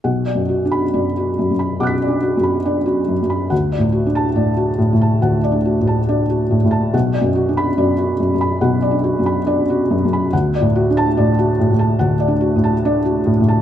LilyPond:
<<
  \new Staff \with { instrumentName = "Felt piano" } { \time 4/4 \key b \minor \tempo 4 = 70 << { r8. b''8 r8. <d''' fis''' b'''>2 | r8. a''8 r2 r8. | r8. b''8 r2 r8. | r8. a''8 r2 r8. | } \\ { fis''16 d''16 fis'8 d''16 fis'16 fis,16 b''16 fis''16 d''16 fis'16 b''16 d''16 fis'16 fis,16 b''16 | fis''16 d''16 fis'8 d''16 fis'16 a,16 a''16 fis''16 d''16 fis'16 a''16 d''16 fis'16 a,16 a''16 | fis''16 d''16 fis'8 d''16 fis'16 fis,16 b''16 fis''16 d''16 fis'16 b''16 d''16 fis'16 fis,16 b''16 | fis''16 d''16 fis'8 d''16 fis'16 a,16 a''16 fis''16 d''16 fis'16 a''16 d''16 fis'16 a,16 a''16 | } >> }
  \new Staff \with { instrumentName = "Felt piano" } { \clef bass \time 4/4 \key b \minor \tuplet 3/2 { b,,8 fis,8 d'8 fis,4 fis,8 b,,8 d'8 fis,8 d'4 fis,8 } | \tuplet 3/2 { d,8 a,8 d'8 a,4 a,8 d,8 d'8 a,8 d'4 a,8 } | \tuplet 3/2 { b,,8 fis,8 d'8 fis,4 fis,8 b,,8 d'8 fis,8 d'4 fis,8 } | \tuplet 3/2 { d,8 a,8 d'8 a,4 a,8 d,8 d'8 a,8 d'4 a,8 } | }
>>